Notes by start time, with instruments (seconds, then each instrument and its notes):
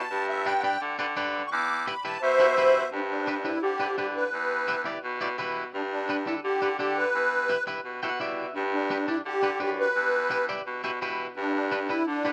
Already playing: accordion A5
0.11 baritone saxophone G2
0.29 accordion E5
0.46 clean electric guitar D4 G4 B4, accordion G5
0.60 clean electric guitar D4, accordion F#5
0.64 clean electric guitar G4 B4, accordion G5
0.81 baritone saxophone D3
0.99 baritone saxophone D3, clean electric guitar D4 G4 B4
1.16 baritone saxophone D3, clean electric guitar D4 G4 B4
1.47 accordion C#6
1.52 baritone saxophone E2, accordion D6
1.86 clean electric guitar E4 G4 B4, accordion B5
2.04 clean electric guitar E4 G4 B4, accordion A5
2.21 baritone saxophone B2, accordion C5 E5
2.39 baritone saxophone B2, clean electric guitar E4 G4 A4
2.57 baritone saxophone B2, clean electric guitar E4 G4 B4
2.92 baritone saxophone G2, accordion D4
3.09 accordion D4
3.27 clean electric guitar D4 G4 B4
3.44 clean electric guitar D4 G4 B4, accordion E4
3.63 baritone saxophone D3, accordion G4
3.80 baritone saxophone D3, clean electric guitar D4 G4 B4
3.98 baritone saxophone D3, clean electric guitar D4 G4 B4, accordion G4
4.16 accordion B4
4.33 baritone saxophone E2
4.68 clean electric guitar E4 G4 B4
4.85 clean electric guitar E4 G4 D5
5.04 baritone saxophone B2
5.21 baritone saxophone B2, clean electric guitar E4 G4 D5
5.38 baritone saxophone B2, clean electric guitar E4 G4 B4
5.74 baritone saxophone G2, accordion D4
5.91 accordion D4
6.09 clean electric guitar D4 G4 B4
6.27 clean electric guitar D4 G4 A4, accordion E4
6.44 baritone saxophone D3, accordion G4
6.62 baritone saxophone D3, clean electric guitar D4 G4 B4
6.79 baritone saxophone D3, clean electric guitar D4 G4 A4, accordion G4
6.97 accordion B4
7.14 baritone saxophone E2
7.49 clean electric guitar E4 G4 B4
7.67 clean electric guitar E4 G4 B4
7.85 baritone saxophone B2
8.02 baritone saxophone B2, clean electric guitar E4 G4 A4 G5
8.09 clean electric guitar F#5
8.20 baritone saxophone B2, clean electric guitar E4 G4 D5 E5
8.55 baritone saxophone G2, accordion D4
8.74 accordion D4
8.91 clean electric guitar D4 G4 B4
9.08 clean electric guitar D4 G4 D5, accordion E4
9.25 baritone saxophone D3, accordion G4
9.43 baritone saxophone D3, clean electric guitar D4 G4 B4
9.60 baritone saxophone F#2, clean electric guitar D4 G4 B4, accordion G4
9.80 accordion B4
9.96 baritone saxophone E2
10.31 clean electric guitar E4 G4 B4
10.49 clean electric guitar E4 G4 D5
10.66 baritone saxophone B2
10.84 baritone saxophone B2, clean electric guitar E4 G4 B4
11.01 baritone saxophone B2, clean electric guitar E4 G4 B4
11.37 baritone saxophone G2, accordion D4
11.54 accordion D4
11.72 clean electric guitar D4 G4 B4
11.89 clean electric guitar D4 G4 B4, accordion E4
12.07 baritone saxophone D3, accordion D4
12.25 baritone saxophone D3, clean electric guitar D4 G4 B4